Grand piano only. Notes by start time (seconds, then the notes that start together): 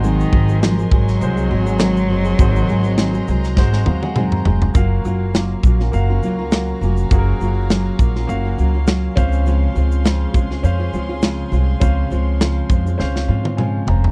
Already playing: G#3 F#4 C5
1.21 G#3 F#4 C5
2.38 G#3 F#4 C5
3.56 G#3 F#4 C5
3.86 F5
4.03 F#5
4.16 G#5
4.32 A#5
4.74 A#3 F#4 F5
5.92 A#3 F#4 F5
7.10 A#3 F#4 G#4
7.19 A#4
8.27 A#3 F#4 F5
9.16 C#4 C5 F5
10.63 C#4 C5 F5
11.80 C#4 C5 F5
12.98 C#4 C5 F5
13.28 F5
13.57 G#5
13.88 A#5